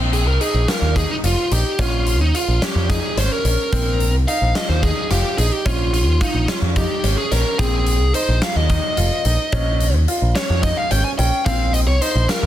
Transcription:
Already playing: picked electric bass A#1, grand piano C4
0.13 lead electric guitar G#4, closed hi-hat
0.26 picked electric bass C2, lead electric guitar A#4
0.40 grand piano D#4, lead electric guitar G#4, closed hi-hat
0.54 picked electric bass A#1
0.68 grand piano F4, lead electric guitar A#4, snare, closed hi-hat
0.82 picked electric bass D#2
0.96 grand piano D#4, lead electric guitar G#4, kick, closed hi-hat
1.11 lead electric guitar D#4
1.23 picked electric bass F1, grand piano F4, lead electric guitar F4, closed hi-hat
1.51 picked electric bass A#1, grand piano D#4, lead electric guitar G4, closed hi-hat
1.79 picked electric bass A#1, grand piano C#4, lead electric guitar F4, kick, closed hi-hat
2.07 closed hi-hat
2.20 picked electric bass D#2, lead electric guitar D#4
2.34 grand piano F4, lead electric guitar F4, closed hi-hat
2.48 picked electric bass A#1
2.62 grand piano C#4, lead electric guitar G4, snare, closed hi-hat
2.75 picked electric bass F2
2.89 grand piano D#4, lead electric guitar G#4, kick, snare, closed hi-hat
3.17 picked electric bass G#1, grand piano C#4, lead electric guitar C5, snare, closed hi-hat
3.32 lead electric guitar A#4
3.45 picked electric bass A#1, grand piano C#4, closed hi-hat
3.72 picked electric bass A#1, grand piano C4, kick, closed hi-hat
4.00 closed hi-hat
4.13 picked electric bass C2
4.28 grand piano D#4, lead electric guitar F5, closed hi-hat
4.42 picked electric bass A#1
4.55 grand piano F4, lead electric guitar D#5, snare, closed hi-hat
4.69 picked electric bass D#2, lead electric guitar C5
4.83 grand piano D#4, lead electric guitar G#4, kick, closed hi-hat
5.11 picked electric bass F1, grand piano F4, lead electric guitar G4, snare, closed hi-hat
5.38 picked electric bass A#1, grand piano D#4, lead electric guitar G#4, closed hi-hat
5.52 lead electric guitar G4
5.65 picked electric bass A#1, grand piano C#4, lead electric guitar F4, kick, closed hi-hat
5.94 lead electric guitar F4, closed hi-hat
6.07 picked electric bass D#2
6.21 lead electric guitar D#4, grand piano F4, kick, closed hi-hat
6.34 picked electric bass A#1
6.48 grand piano C#4, lead electric guitar F4, snare, closed hi-hat
6.62 picked electric bass F2
6.76 grand piano D#4, lead electric guitar G4, kick, closed hi-hat
7.03 picked electric bass G#1, grand piano C#4, snare, closed hi-hat
7.18 lead electric guitar G#4
7.31 picked electric bass A#1, grand piano C#4, lead electric guitar A#4, snare, closed hi-hat
7.59 picked electric bass A#1, grand piano C4, lead electric guitar G#4, kick, closed hi-hat
7.86 closed hi-hat
8.01 picked electric bass C2
8.14 grand piano D#4, lead electric guitar C5, closed hi-hat
8.28 picked electric bass A#1
8.42 grand piano F4, lead electric guitar F5, snare, closed hi-hat
8.56 picked electric bass D#2, lead electric guitar D#5
8.70 grand piano D#4, kick, closed hi-hat
8.97 picked electric bass F1, grand piano F4, closed hi-hat
9.25 picked electric bass A#1, grand piano D#4, closed hi-hat
9.52 picked electric bass A#1, grand piano C#4, kick, closed hi-hat
9.81 closed hi-hat
9.94 picked electric bass D#2
10.08 grand piano F4, closed hi-hat
10.22 picked electric bass A#1
10.36 grand piano C#4, lead electric guitar C#5, snare, closed hi-hat
10.50 picked electric bass F2
10.63 grand piano D#4, lead electric guitar D#5, kick, closed hi-hat
10.77 lead electric guitar F5
10.91 picked electric bass G#1, grand piano C#4, lead electric guitar G5, closed hi-hat
11.04 lead electric guitar G#5
11.19 picked electric bass A#1, grand piano C#4, lead electric guitar G5, closed hi-hat
11.46 picked electric bass A#1, grand piano C4, lead electric guitar F5, kick, closed hi-hat
11.73 lead electric guitar D#5, closed hi-hat
11.87 picked electric bass C2, lead electric guitar C#5
12.01 grand piano D#4, lead electric guitar C5, closed hi-hat
12.15 picked electric bass A#1
12.29 grand piano F4, lead electric guitar A#4, snare, closed hi-hat
12.43 picked electric bass D#2

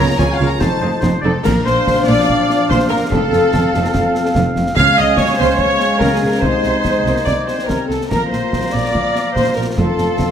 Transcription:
Already playing: french horn section F3 C#4, violin section A#4 A#5, trumpet section C#5, flute A#5
0.16 double bass section C#2, french horn section F3 C#4, viola section C#4 F4, clarinet F4, violin section G#4 G#5, oboe C#5, trumpet section C#5, flute G#5, concert bass drum, snare
0.20 cello section C#3
0.33 violin section F4 F5, flute F5
0.38 double bass section C#2, cello section C#3, viola section C#4 F4, clarinet F4, oboe C#5
0.45 violin section A#4 A#5, flute A#5
0.59 double bass section F1, cello section F2, french horn section F3 D#4, viola section C4 D#4, clarinet D#4, violin section A4 A5, oboe C5, trumpet section C5, flute A5, concert bass drum, snare
0.81 double bass section F1, cello section F2, viola section C4 D#4, clarinet D#4, oboe C5
1.00 double bass section F1, viola section C4 D#4, clarinet D#4, oboe C5, concert bass drum, snare
1.04 cello section F2
1.22 double bass section F1, cello section F2, viola section C4 D#4 A4, clarinet D#4, violin section A4, oboe D5, flute A5
1.26 violin section A4
1.44 double bass section A#1, cello section A#2, french horn section F3 D4, clarinet D4, viola section A#4, violin section A#4, oboe F5, trumpet section F5, flute A#5, concert bass drum, snare, crash
1.65 double bass section A#1, cello section A#2, viola section C5, violin section C5, flute C6, snare
1.87 double bass section A#1, cello section A#2, concert bass drum, snare
2.05 double bass section A#1, cello section A#2, viola section D5, violin section D5, flute D6
2.29 double bass section A#1, cello section A#2, concert bass drum
2.50 snare
2.69 double bass section A#1, cello section A#2, violin section C5, viola section C5, flute C6, concert bass drum, snare
2.89 double bass section A#1, cello section A#2, viola section A#4, violin section A#4, flute A#5
3.11 double bass section F1, cello section F2, french horn section F3 C4, clarinet C4, viola section A4, violin section A4, trumpet section F5, flute A5, concert bass drum
3.32 double bass section F1, cello section F2, snare
3.53 double bass section F1, cello section F2, concert bass drum, snare
3.74 double bass section F1, cello section F2, snare
3.84 snare
3.94 double bass section F1, cello section F2, concert bass drum, snare
4.15 snare
4.26 snare
4.35 double bass section F1, cello section F2, concert bass drum, snare
4.56 double bass section F1, cello section F2, snare
4.67 snare
4.75 double bass section C#2, cello section C#3, french horn section G#3 C#4, clarinet C#4, viola section F5, trumpet section F5, violin section F5, oboe G#5, flute F6, concert bass drum, snare
4.97 double bass section C#2, cello section C#3, viola section D#5, violin section D#5, flute D#6, snare
5.17 double bass section C#2, cello section C#3, french horn section G#3 C#4, viola section C#5, violin section C#5, trumpet section F5, flute C#6, concert bass drum, snare
5.37 double bass section C#2, cello section C#3, viola section C5, violin section C5, flute C6
5.57 double bass section C#2, cello section C#3, french horn section G#3 C#4, viola section C#5, violin section C#5, trumpet section F5, flute C#6, concert bass drum
5.80 snare
6.00 double bass section C#2, cello section C#3, viola section A#4, violin section A#4, flute A#5, concert bass drum, snare
6.13 violin section G#4, viola section G#4, flute G#5
6.22 double bass section C#2, cello section C#3
6.28 viola section A#4, violin section A#4, flute A#5
6.40 double bass section C2, cello section C3, french horn section G#3 C4, clarinet D#4, viola section C5, violin section C5, flute C6, concert bass drum
6.44 violin section C5, trumpet section D#5
6.63 double bass section C2, cello section C3, snare
6.85 double bass section C2, cello section C3, french horn section G#3, concert bass drum, snare
7.06 double bass section C2, cello section C3, french horn section A#3, snare
7.17 snare
7.25 double bass section C2, cello section C3, viola section D5, violin section D5, flute D6, concert bass drum, snare
7.47 french horn section C4, viola section C5, violin section C5, flute C6, snare
7.59 snare
7.67 double bass section C2, cello section C3, viola section A#4, violin section A#4, flute A#5, concert bass drum, snare
7.88 double bass section C2, cello section C3, viola section A4, violin section A4, flute A5, snare
8.01 snare
8.09 double bass section A#1, cello section A#2, french horn section F3 A#3, clarinet F4, violin section A#4, viola section A#4, trumpet section F5, flute A#5, oboe A#5, concert bass drum, snare, crash
8.30 double bass section A#1, cello section A#2, viola section C5, violin section C5, flute C6, snare
8.53 double bass section A#1, cello section A#2, concert bass drum, snare
8.72 double bass section A#1, cello section A#2, viola section D5, violin section D5, flute D6
8.94 double bass section A#1, cello section A#2, concert bass drum
9.15 snare
9.34 double bass section A#1, cello section A#2, viola section C5, violin section C5, flute C6, concert bass drum, snare
9.55 double bass section A#1, cello section A#2, viola section A#4, violin section A#4, flute A#5
9.76 double bass section F1, cello section F2, french horn section F3 C4, viola section A4, violin section A4, trumpet section F5, flute A5, oboe C6, concert bass drum
9.98 double bass section F1, cello section F2, snare
10.18 double bass section F1, cello section F2, concert bass drum, snare

